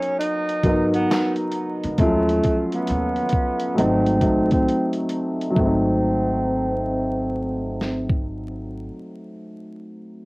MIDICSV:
0, 0, Header, 1, 5, 480
1, 0, Start_track
1, 0, Tempo, 895522
1, 1063, Time_signature, 4, 2, 24, 8
1, 5495, End_track
2, 0, Start_track
2, 0, Title_t, "Tenor saxophone"
2, 0, Program_c, 0, 66
2, 0, Note_on_c, 0, 61, 82
2, 82, Note_off_c, 0, 61, 0
2, 103, Note_on_c, 0, 63, 95
2, 480, Note_off_c, 0, 63, 0
2, 506, Note_on_c, 0, 59, 85
2, 722, Note_off_c, 0, 59, 0
2, 1071, Note_on_c, 0, 57, 93
2, 1444, Note_off_c, 0, 57, 0
2, 1470, Note_on_c, 0, 59, 85
2, 2006, Note_off_c, 0, 59, 0
2, 2029, Note_on_c, 0, 60, 80
2, 2403, Note_off_c, 0, 60, 0
2, 2426, Note_on_c, 0, 60, 74
2, 2642, Note_off_c, 0, 60, 0
2, 2986, Note_on_c, 0, 60, 84
2, 4403, Note_off_c, 0, 60, 0
2, 5495, End_track
3, 0, Start_track
3, 0, Title_t, "Felt piano"
3, 0, Program_c, 1, 0
3, 0, Control_c, 1, 64, 127
3, 0, Note_on_c, 1, 54, 77
3, 0, Note_on_c, 1, 59, 69
3, 0, Note_on_c, 1, 63, 82
3, 0, Note_on_c, 1, 70, 59
3, 339, Note_off_c, 1, 54, 0
3, 339, Note_on_c, 1, 54, 73
3, 346, Note_off_c, 1, 70, 0
3, 346, Note_on_c, 1, 70, 70
3, 352, Note_off_c, 1, 59, 0
3, 352, Note_on_c, 1, 59, 66
3, 359, Note_off_c, 1, 63, 0
3, 359, Note_on_c, 1, 63, 78
3, 997, Note_off_c, 1, 54, 0
3, 1001, Note_off_c, 1, 70, 0
3, 1004, Note_off_c, 1, 59, 0
3, 1007, Note_off_c, 1, 63, 0
3, 1061, Note_on_c, 1, 53, 61
3, 1068, Note_on_c, 1, 57, 64
3, 1071, Control_c, 1, 64, 0
3, 1075, Note_on_c, 1, 61, 69
3, 1082, Note_on_c, 1, 65, 82
3, 1097, Note_on_c, 1, 54, 67
3, 1108, Note_off_c, 1, 53, 0
3, 1162, Control_c, 1, 64, 127
3, 1937, Note_off_c, 1, 57, 0
3, 1941, Note_off_c, 1, 61, 0
3, 1944, Note_off_c, 1, 65, 0
3, 1952, Note_off_c, 1, 54, 0
3, 2007, Note_on_c, 1, 54, 68
3, 2013, Note_on_c, 1, 57, 66
3, 2022, Note_on_c, 1, 60, 64
3, 2027, Note_on_c, 1, 63, 79
3, 2031, Control_c, 1, 64, 0
3, 2112, Control_c, 1, 64, 127
3, 2234, Note_off_c, 1, 54, 0
3, 2237, Note_off_c, 1, 57, 0
3, 2241, Note_off_c, 1, 60, 0
3, 2243, Note_off_c, 1, 63, 0
3, 2250, Note_on_c, 1, 54, 64
3, 2255, Note_on_c, 1, 57, 66
3, 2264, Note_on_c, 1, 60, 63
3, 2270, Note_on_c, 1, 63, 71
3, 2913, Note_off_c, 1, 54, 0
3, 2915, Note_off_c, 1, 57, 0
3, 2920, Note_off_c, 1, 60, 0
3, 2923, Note_off_c, 1, 63, 0
3, 2949, Note_on_c, 1, 54, 72
3, 2974, Note_on_c, 1, 57, 67
3, 2990, Control_c, 1, 64, 0
3, 3002, Note_on_c, 1, 60, 72
3, 3028, Note_on_c, 1, 63, 77
3, 3090, Control_c, 1, 64, 127
3, 4721, Note_off_c, 1, 54, 0
3, 4746, Note_off_c, 1, 57, 0
3, 4773, Note_off_c, 1, 60, 0
3, 4800, Note_off_c, 1, 63, 0
3, 5495, End_track
4, 0, Start_track
4, 0, Title_t, "Upright bass"
4, 0, Program_c, 2, 32
4, 340, Note_on_c, 2, 32, 80
4, 555, Note_off_c, 2, 32, 0
4, 988, Note_on_c, 2, 38, 76
4, 1058, Note_off_c, 2, 38, 0
4, 1067, Note_on_c, 2, 39, 95
4, 1279, Note_off_c, 2, 39, 0
4, 1553, Note_on_c, 2, 39, 94
4, 1762, Note_off_c, 2, 39, 0
4, 2029, Note_on_c, 2, 32, 97
4, 2240, Note_off_c, 2, 32, 0
4, 2262, Note_on_c, 2, 33, 80
4, 2476, Note_off_c, 2, 33, 0
4, 2986, Note_on_c, 2, 32, 79
4, 4757, Note_off_c, 2, 32, 0
4, 5495, End_track
5, 0, Start_track
5, 0, Title_t, "Drums"
5, 13, Note_on_c, 9, 42, 43
5, 67, Note_off_c, 9, 42, 0
5, 110, Note_on_c, 9, 42, 87
5, 164, Note_off_c, 9, 42, 0
5, 261, Note_on_c, 9, 42, 45
5, 314, Note_off_c, 9, 42, 0
5, 338, Note_on_c, 9, 36, 82
5, 338, Note_on_c, 9, 42, 60
5, 392, Note_off_c, 9, 36, 0
5, 392, Note_off_c, 9, 42, 0
5, 501, Note_on_c, 9, 42, 49
5, 554, Note_off_c, 9, 42, 0
5, 594, Note_on_c, 9, 38, 98
5, 595, Note_on_c, 9, 42, 69
5, 599, Note_on_c, 9, 39, 89
5, 648, Note_off_c, 9, 38, 0
5, 649, Note_off_c, 9, 42, 0
5, 653, Note_off_c, 9, 39, 0
5, 727, Note_on_c, 9, 42, 44
5, 780, Note_off_c, 9, 42, 0
5, 812, Note_on_c, 9, 42, 61
5, 865, Note_off_c, 9, 42, 0
5, 984, Note_on_c, 9, 42, 41
5, 1037, Note_off_c, 9, 42, 0
5, 1061, Note_on_c, 9, 42, 72
5, 1063, Note_on_c, 9, 36, 101
5, 1115, Note_off_c, 9, 42, 0
5, 1116, Note_off_c, 9, 36, 0
5, 1228, Note_on_c, 9, 42, 39
5, 1281, Note_off_c, 9, 42, 0
5, 1305, Note_on_c, 9, 42, 64
5, 1311, Note_on_c, 9, 36, 68
5, 1359, Note_off_c, 9, 42, 0
5, 1365, Note_off_c, 9, 36, 0
5, 1459, Note_on_c, 9, 42, 46
5, 1512, Note_off_c, 9, 42, 0
5, 1539, Note_on_c, 9, 42, 72
5, 1593, Note_off_c, 9, 42, 0
5, 1693, Note_on_c, 9, 42, 36
5, 1747, Note_off_c, 9, 42, 0
5, 1764, Note_on_c, 9, 42, 63
5, 1783, Note_on_c, 9, 36, 80
5, 1817, Note_off_c, 9, 42, 0
5, 1837, Note_off_c, 9, 36, 0
5, 1928, Note_on_c, 9, 42, 42
5, 1981, Note_off_c, 9, 42, 0
5, 2027, Note_on_c, 9, 42, 80
5, 2080, Note_off_c, 9, 42, 0
5, 2178, Note_on_c, 9, 42, 43
5, 2232, Note_off_c, 9, 42, 0
5, 2257, Note_on_c, 9, 36, 85
5, 2258, Note_on_c, 9, 42, 61
5, 2311, Note_off_c, 9, 36, 0
5, 2311, Note_off_c, 9, 42, 0
5, 2416, Note_on_c, 9, 42, 49
5, 2422, Note_on_c, 9, 36, 85
5, 2470, Note_off_c, 9, 42, 0
5, 2475, Note_off_c, 9, 36, 0
5, 2511, Note_on_c, 9, 42, 59
5, 2564, Note_off_c, 9, 42, 0
5, 2642, Note_on_c, 9, 42, 43
5, 2696, Note_off_c, 9, 42, 0
5, 2729, Note_on_c, 9, 42, 62
5, 2782, Note_off_c, 9, 42, 0
5, 2901, Note_on_c, 9, 42, 43
5, 2955, Note_off_c, 9, 42, 0
5, 2982, Note_on_c, 9, 36, 92
5, 3036, Note_off_c, 9, 36, 0
5, 4187, Note_on_c, 9, 38, 45
5, 4240, Note_off_c, 9, 38, 0
5, 4338, Note_on_c, 9, 36, 68
5, 4392, Note_off_c, 9, 36, 0
5, 5495, End_track
0, 0, End_of_file